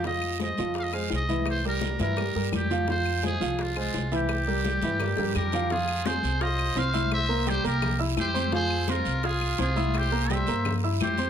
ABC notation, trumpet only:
X:1
M:4/4
L:1/16
Q:1/4=170
K:Fm
V:1 name="Trumpet"
z16 | z16 | z16 | z12 G4 |
F4 A4 c4 c4 | c4 G2 G4 z2 G4 | A4 F4 F4 F4 | G4 c4- c z3 G4 |]